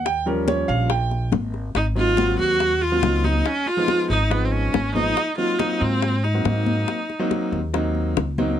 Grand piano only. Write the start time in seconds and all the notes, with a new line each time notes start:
0.06 G5
0.26 F3 G3 C#4 A#4
0.48 C#5
0.68 F5
0.90 G5
1.95 F#3 A#3 C4 D#4
2.17 F#3 A#3 C4 F#4
2.92 F#3 A#3 C4 F4
3.03 F#3 A#3 C4 D#4
3.77 F3 G#3 B3 D#4
4.30 F3 G#3 B3 D#4
4.95 F3 G#3 B3 D#4
5.38 F#3 A#3 C4 D#4
5.59 F#3 A#3 C4 F4
6.34 F#3 A#3 C4 F#4
6.45 F#3 A#3 C4 D#4
7.19 F#3 A#3 C4 D#4
7.73 F#3 A#3 C4 D#4
8.38 F#3 A#3 C4 D#4